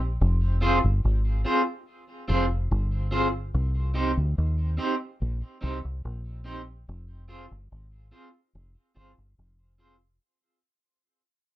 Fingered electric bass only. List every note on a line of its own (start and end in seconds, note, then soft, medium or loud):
0.00 0.17 A#1 loud
0.21 0.81 F1 loud
0.84 1.03 G1 medium
1.05 1.44 G#1 medium
2.30 2.69 F1 medium
2.71 3.51 G1 loud
3.55 4.14 C2 loud
4.17 4.36 D2 medium
4.38 4.77 D#2 loud
5.22 5.41 A#1 medium
5.63 5.83 C2 medium
5.85 6.04 C2 medium
6.05 6.84 A#1 medium
6.89 7.48 F1 loud
7.51 7.70 G1 medium
7.72 8.11 G#1 medium
8.55 8.75 F1 loud
8.96 9.16 G1 loud
9.18 9.37 G1 medium
9.38 10.18 F1 medium